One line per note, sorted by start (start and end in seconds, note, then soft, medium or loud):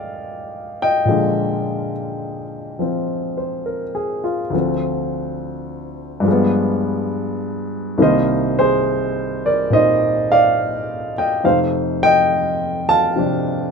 0.00 1.04 A#2 soft
0.00 1.09 D3 medium
0.00 1.06 F3 soft
0.00 1.07 G#3 medium
0.00 4.55 D5 medium
0.00 0.83 D#5 medium
0.00 4.55 F5 medium
0.00 0.82 G5 medium
0.82 1.92 D#5 medium
0.82 1.91 G5 medium
1.05 4.52 A#2 soft
1.05 2.77 F3 soft
1.05 4.54 G#3 soft
1.11 4.50 D3 medium
2.79 4.52 F3 soft
2.79 4.54 C4 soft
3.37 3.83 C5 soft
3.66 4.21 A#4 soft
3.95 4.40 G#4 soft
4.24 4.69 F4 medium
4.50 6.24 D2 soft
4.50 6.25 D3 soft
4.50 6.22 F3 soft
4.56 6.27 C4 medium
6.20 7.96 G2 medium
6.20 7.97 F3 soft
6.28 7.99 G#3 medium
6.28 8.01 B3 medium
7.98 11.43 C2 medium
7.98 11.43 C3 soft
7.98 11.44 D#3 medium
7.98 11.44 A#3 soft
8.02 8.15 C5 medium
8.02 8.15 D#5 medium
8.59 9.40 G#4 medium
8.59 9.47 C5 medium
9.46 9.71 A#4 soft
9.46 9.70 D5 medium
9.70 11.43 A#2 soft
9.70 11.44 C4 soft
9.70 11.44 D#4 soft
9.70 10.32 D#5 medium
9.74 10.27 C5 medium
10.32 11.13 D5 medium
10.32 11.13 F5 loud
11.18 11.43 D#5 medium
11.18 11.43 G5 medium
11.44 13.71 F2 soft
11.44 13.14 C3 soft
11.44 13.71 A3 soft
11.44 13.71 D#4 soft
11.44 11.59 C5 medium
11.44 11.58 F5 medium
12.03 12.85 D#5 medium
12.03 12.85 G5 loud
12.89 13.71 F5 medium
12.89 13.71 A5 loud
13.16 13.71 C3 soft
13.16 13.71 F3 soft
13.16 13.71 D4 soft